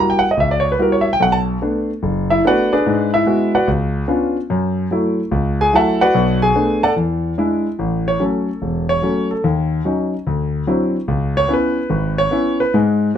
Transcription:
grand piano
Already playing: G3 A#3 E4 F#4
0.00 A#5
0.10 G5
0.19 F#5
0.31 D#5
0.37 C#2 E5
0.51 D5
0.60 C#5
0.72 B4
0.79 G3 A#3 E4 F#4 A#4
0.92 C#5
1.01 E5
1.13 G5
1.20 B1 F#5
1.32 A5
1.62 A3 B3 D4
2.03 F#1
2.30 E4 E5
2.45 A3 B3 D4 F#4 B4 D5 F#5
2.73 D4 G#4 B4 D5
2.86 G#2 G#3
3.14 E4 E5
3.26 G#3 B3 F#4
3.55 F#4 B4 D5 F#5
3.68 C#2
4.08 B3 C#4 D4 F4
4.50 F#2
4.91 F#3 A3 E4
5.31 C#2
5.61 G#4 G#5
5.73 F#3 A3 E4 A4 E5 F#5 A5
6.01 F#4 B4 D5 F#5
6.14 B1 B2
6.42 G#4 G#5
6.55 A3 B3 D4
6.83 A4 D5 F#5 A5
6.96 E2
7.38 G#3 D4 E4
7.79 A1
8.08 C#5
8.20 F#3 A3 C#4
8.24 A4
8.62 E1
8.89 C#5
9.02 F#3 A3 C#4
9.31 A4
9.44 D#2
9.85 F#3 C#4 D#4
10.27 D2
10.67 F#3 C4 D4 E4
11.08 C#2
11.37 C#5
11.48 B3 C#4 E4
11.54 B4
11.90 G#1
12.18 C#5
12.31 B3 C#4 E4
12.60 B4
12.74 G#2 G#3

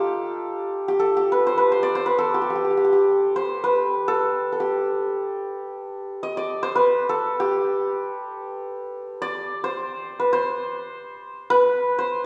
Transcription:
santur
Already playing: D#4 F4 G4 A4
0.88 G4
0.99 A4
1.17 G4
1.32 B4
1.47 C5
1.58 B4
1.72 C5
1.83 D5
1.95 C5
2.06 B4
2.18 A4
2.34 G4
2.42 G4
2.50 G4
2.56 G4
2.64 G4
2.70 G4
2.77 G4
2.84 G4
2.93 G4
3.36 C5
3.64 B4
4.08 A4
4.52 A4
4.60 G4
6.23 D#5
6.37 D5
6.63 C5
6.75 B4
7.09 A4
7.40 G4
9.22 D5
9.64 C5
10.20 B4
10.33 C5
11.50 B4
11.99 C5

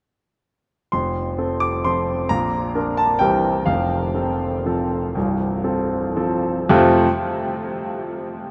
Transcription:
grand piano
0.92 F1 F2 C6
1.38 C4 A4
1.60 D6
1.84 F3 C4 A4 C6
2.29 A#1 A#2 A#5
2.75 D4 A#4
2.97 A5
3.19 C2 C3 E3 C4 A#4 G5
3.66 F1 F2 F5
4.15 C4 A4
4.66 F3 C4 A4
5.15 C1 C2
5.64 C4 A4
6.16 F3 C4 A4
6.69 F2 C3 A3 C4 F4 A4

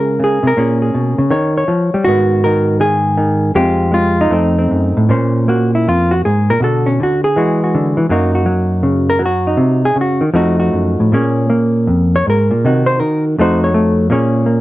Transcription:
hollow-body jazz guitar
Already playing: C#3 G#3 C#4 F4 A#4
0.19 C#3
0.24 G#4
0.43 C3
0.47 A#4
0.57 A#2 A#3 C#4 G#4
0.82 G#4
0.94 B2
1.18 C#3
1.30 D#3 C#5
1.57 C#5
1.68 F3
1.94 G3
2.04 G#2 D#3 B3 F#4
2.44 D#3 A#4
2.80 D#3 G#4
3.17 D#3
3.55 F2 G#3 C4 F4 G4
3.92 G#3 F4
4.21 D#4
4.30 F2 A3 C4
4.58 C4
4.71 F#2
4.97 A2
5.09 A#2 A#3 C#4 C5
5.48 A#3 F#4
5.75 E4
5.88 F2 F4
6.11 F#4
6.25 G#2 G#4
6.50 A#2 A#4
6.60 B2 D3 F#4 A4
6.86 C#4
7.00 D3 F#4
7.24 G#4
7.36 E3 G#3 F#4
7.64 F#4
7.75 D3
7.97 E3
8.09 F#2 F#3 A#3 D#4 F#4
8.35 F#4
8.46 F#3
8.83 C#3
9.10 A#4
9.19 F#3
9.26 F#4
9.47 D#4
9.57 C3
9.85 G#4
9.96 C#3
10.01 F#4
10.21 D#3
10.34 F2 F3 A3 D#4 F#4
10.60 F#4
10.73 F#2
11.00 A2
11.12 A#2 A#3 C#4 G#4 C#5
11.50 A#3
11.87 F2
12.16 C#5
12.27 G#2 A#4
12.51 A#2
12.65 C3 D#3 D#4 F#4
12.86 C5
13.00 D#3 A#4
13.39 F2 A3 D#4 F#4 C5
13.64 C#5
13.74 A3
14.10 A#2 A#3 C#4 G#4 C#5
14.46 A#3

